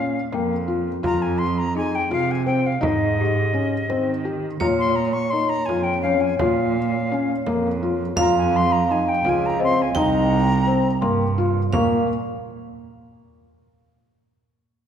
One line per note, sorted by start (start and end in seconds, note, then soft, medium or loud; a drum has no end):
0.00 0.18 A#2 medium
0.00 0.16 C#4 medium
0.00 0.68 F5 medium
0.33 0.94 F2 medium
0.33 0.52 A#3 medium
0.33 1.37 G5 medium
0.33 frame drum soft
0.68 0.87 F4 medium
1.03 1.96 F2 medium
1.03 1.42 F4 medium
1.03 1.23 A#5 medium
1.03 frame drum soft
1.22 1.39 G#5 medium
1.38 1.59 C6 medium
1.58 1.76 A#5 medium
1.75 1.95 D#4 medium
1.75 2.86 G#4 medium
1.75 1.96 G#5 medium
1.95 2.11 G5 medium
2.10 2.72 C3 medium
2.10 2.30 F4 medium
2.10 2.32 F5 medium
2.10 frame drum soft
2.31 2.45 G#5 medium
2.46 2.66 C4 medium
2.46 2.67 G5 medium
2.66 2.85 F5 medium
2.81 3.74 G#2 medium
2.81 3.20 D#4 medium
2.81 4.26 D#5 medium
2.81 frame drum medium
3.21 4.30 G4 medium
3.53 3.73 C#4 medium
3.89 4.51 D#3 medium
3.89 4.09 C4 medium
3.89 frame drum soft
4.25 4.44 G4 medium
4.60 5.52 A#2 medium
4.60 4.99 F4 medium
4.60 8.28 C#5 medium
4.60 4.66 A#5 medium
4.60 frame drum soft
4.79 4.97 C6 medium
4.95 5.14 A#5 medium
5.13 5.31 C#6 medium
5.30 5.52 D#4 medium
5.30 6.43 A#4 soft
5.30 5.50 C6 medium
5.49 5.67 A#5 medium
5.65 6.29 F2 medium
5.65 5.88 F4 medium
5.65 5.84 G#5 medium
5.65 frame drum soft
5.83 6.01 G5 medium
6.02 6.23 C#4 medium
6.02 7.14 C#5 medium
6.02 6.22 F5 medium
6.20 6.37 G#5 medium
6.38 7.31 A#2 medium
6.38 6.78 F4 medium
6.38 7.77 F5 medium
6.38 frame drum medium
7.12 7.31 C#4 medium
7.47 8.07 F2 medium
7.47 7.66 A#3 medium
7.47 frame drum soft
7.83 8.02 F4 medium
8.16 9.09 F2 loud
8.16 8.57 F4 medium
8.16 10.00 F5 medium
8.16 8.35 A#5 medium
8.16 frame drum medium
8.37 8.57 G#5 medium
8.56 8.73 C6 medium
8.72 8.92 A#5 medium
8.90 9.09 D#4 medium
8.90 9.10 G#5 medium
9.08 9.30 G5 medium
9.24 9.85 C#2 medium
9.24 9.44 F4 medium
9.24 frame drum soft
9.29 9.47 G#5 medium
9.45 9.62 A#5 medium
9.59 9.79 C4 medium
9.59 10.27 D#5 medium
9.63 9.83 C6 medium
9.81 10.01 G#5 medium
9.95 10.87 C2 loud
9.95 10.34 D#4 medium
9.95 11.33 G5 medium
9.95 frame drum soft
9.99 11.04 A#5 medium
10.29 11.40 G5 medium
10.67 10.86 C4 medium
11.01 11.63 G2 medium
11.01 11.21 A#3 medium
11.01 12.04 C6 medium
11.01 frame drum soft
11.38 11.57 F4 medium
11.73 12.07 A#2 medium
11.73 12.06 A#3 medium
11.73 12.06 F5 medium
11.73 13.47 C#6 medium
11.73 frame drum medium